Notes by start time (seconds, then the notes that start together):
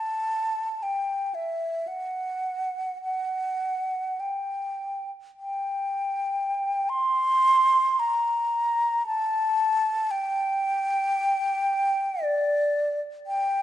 Already playing: A5
0.83 G5
1.35 E5
1.88 F#5
3.02 F#5
4.20 G5
5.39 G5
6.89 C6
7.99 A#5
9.07 A5
10.11 G5
12.23 D5
13.27 G5